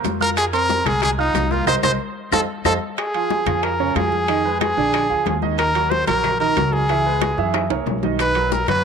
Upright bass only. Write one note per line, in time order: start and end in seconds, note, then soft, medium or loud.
0.04 0.80 F2 medium
0.85 1.31 C2 loud
1.34 1.65 C2 medium
1.66 1.79 C2 medium
1.83 1.95 C2 medium
2.32 2.44 F2 loud
2.64 2.77 F2 loud
3.46 3.92 F2 loud
3.95 4.71 F2 loud
4.77 5.07 A#1 medium
5.10 5.25 D2 medium
5.26 6.02 D#2 medium
6.07 6.53 A#1 medium
6.56 7.32 C#2 medium
7.38 7.68 F#2 medium
7.70 7.86 C2 medium
7.86 8.62 B1 medium
8.67 8.84 F#2 medium